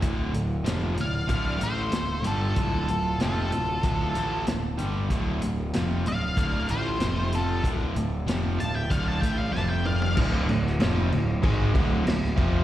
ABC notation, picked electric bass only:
X:1
M:4/4
L:1/8
Q:1/4=95
K:Dm
V:1 name="Picked electric bass" clef=bass
D,,, D,,, F,,, D,,, D,,, A,,, D,,, G,,, | D,,, D,,, F,,, D,,, D,,, A,,, D,,, G,,, | D,,, D,,, F,,, D,,, D,,, A,,, F,,,2 | D,,, D,,, F,,, D,,, D,,, A,,, F,,,2 |
D,,, D,,, F,,, D,,, ^G,,, D,,, D,,, F,,, |]